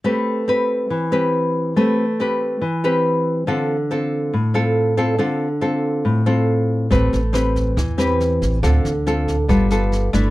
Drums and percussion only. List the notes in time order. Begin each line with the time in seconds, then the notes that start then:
6.91 kick, snare
7.13 snare
7.34 cross-stick, snare
7.56 kick, snare
7.77 kick, cross-stick, snare
7.99 snare
8.20 snare
8.42 kick, snare
8.63 kick, cross-stick, snare
8.85 snare
9.07 snare
9.28 kick, snare
9.49 kick, cross-stick, snare
9.71 snare
9.92 snare
10.13 kick, cross-stick, snare